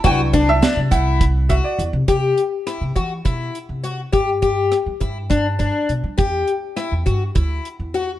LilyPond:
<<
  \new Staff \with { instrumentName = "Grand piano" } { \time 7/8 \key c \lydian \tempo 4 = 102 << { g''8. e''8. fis''4 e''16 d''8 r16 | r2. r8 | r2. r8 | r2. r8 | } \\ { <fis b d' e'>4. r2 | r2. r8 | r2. r8 | r2. r8 | } >> }
  \new Staff \with { instrumentName = "Twelve-string acoustic guitar" } { \time 7/8 \key c \lydian fis'8 d'8 d'8 e'4 fis'4 | g'4 e'8 fis'8 e'4 fis'8 | g'8 g'4 e'8 d'8 d'4 | g'4 e'8 fis'8 e'4 fis'8 | }
  \new Staff \with { instrumentName = "Upright bass" } { \clef bass \time 7/8 \key c \lydian c,4~ c,16 c16 c,4. e,16 c16 | r4 r16 c16 e8 b,8 r16 c8. | g,4~ g,16 g16 g,4. b,16 g16 | e,8 r8. e,16 g,8 d,8 r16 e,8. | }
  \new DrumStaff \with { instrumentName = "Drums" } \drummode { \time 7/8 <hh bd>8 <hh bd>8 <hh sn>8 <hh bd>8 <hh bd>8 <hh bd>8 hh8 | <hh bd>8 hh8 <hh ss>8 <hh bd>8 <hh bd>8 hh8 hh8 | <hh bd>8 <hh bd>8 <hh ss>8 <hh bd>8 <hh bd>8 <hh bd>8 hh8 | <hh bd>8 hh8 <hh ss>8 <hh bd>8 <hh bd>8 hh8 hh8 | }
>>